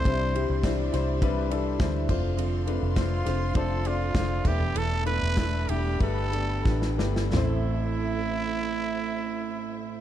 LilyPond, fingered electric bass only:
\new Staff \with { instrumentName = "Fingered electric bass" } { \clef bass \time 4/4 \key a \minor \tempo 4 = 98 c,8. c,8. c,4. d,8 f,,8~ | f,,8. f,,8. f,,8 f,,4 f,,8 e,,8 | e,,8. e,,8. e,,8 g,,4 a,,8 g,,8 | a,,1 | }